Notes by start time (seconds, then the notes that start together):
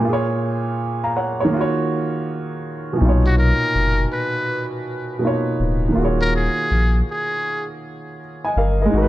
Already playing: A#2
0.01 A#3 F4
0.09 G#4 C#5
1.04 F5 A#5
1.16 C#5 F#5
1.40 G#4 C#5
1.45 D#3
1.49 A#3
1.53 F4 F#4
1.61 C#5
2.93 A#2 B2
3.01 B1 D#4
3.05 F4 C#5
3.27 F#4
3.39 A#4
3.75 F#1
4.13 B4
5.19 B2 A#3 D#4
5.25 F4 C#5
5.60 D1
5.89 D#3 A#3
5.95 D#1 F4 F#4
6.02 G#4 C#5
6.22 A#4
6.36 G#4
6.71 A#1
7.11 G#4
8.45 D#5 G#5
8.56 G1 A#4 F5
8.82 G#3 A#4 D#5
8.90 G#1 D#4 F#4
8.98 A#4
9.02 B4